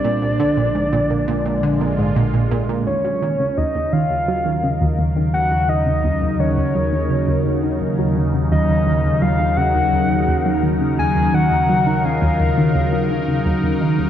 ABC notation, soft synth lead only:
X:1
M:4/4
L:1/8
Q:1/4=85
K:Bb
V:1 name="Soft synth lead"
d6 z2 | [K:Ebm] d2 e f3 z g | e2 d4 z2 | e2 f g3 z a |
g2 f4 z2 |]